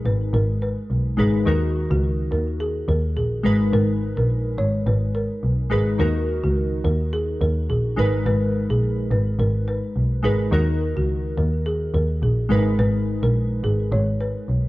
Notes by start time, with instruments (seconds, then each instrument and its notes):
Already playing: synth keys G#3 D#4 A#4 B4
0.05 double bass G#1, marimba B4
0.33 double bass G#1, marimba A#4
0.62 marimba B4
0.90 double bass B1
1.17 double bass G#1, synth keys G#3 D#4 A#4 B4, marimba G#4
1.45 double bass D#2, synth keys D#3 D#4 F#4 A#4, marimba A#4
1.90 double bass C#2, marimba F#4
2.31 double bass D#2, marimba A#4
2.60 marimba G#4
2.88 double bass D#2, marimba A#4
3.16 double bass A#1, marimba G#4
3.43 double bass G#1, synth keys G#3 D#4 A#4 B4
3.73 double bass G#1, marimba A#4
4.17 double bass A#1, marimba A#4
4.58 double bass G#1, marimba C#5
4.86 double bass G#1, marimba B4
5.15 marimba A#4
5.43 double bass B1
5.70 double bass G#1, synth keys G#3 D#4 A#4 B4, marimba G#4
5.98 double bass D#2, synth keys D#3 D#4 F#4 A#4, marimba A#4
6.43 double bass C#2, marimba F#4
6.84 double bass D#2, marimba A#4
7.13 marimba G#4
7.41 double bass D#2, marimba A#4
7.69 double bass A#1, marimba G#4
7.96 double bass G#1, synth keys G#3 D#4 A#4 B4
8.26 double bass G#1, marimba B4
8.70 double bass A#1, marimba G#4
9.11 double bass G#1, marimba B4
9.39 double bass G#1, marimba A#4
9.68 marimba B4
9.96 double bass B1
10.23 double bass G#1, synth keys G#3 D#4 A#4 B4, marimba G#4
10.51 double bass D#2, synth keys D#3 D#4 F#4 A#4, marimba A#4
10.96 double bass C#2, marimba F#4
11.37 double bass D#2, marimba A#4
11.66 marimba G#4
11.94 double bass D#2, marimba A#4
12.22 double bass A#1, marimba G#4
12.49 double bass G#1, synth keys G#3 D#4 A#4 B4
12.79 double bass G#1, marimba B4
13.22 double bass A#1, marimba A#4
13.63 double bass G#1, marimba G#4
13.92 double bass G#1, marimba C#5
14.21 marimba B4
14.48 double bass B1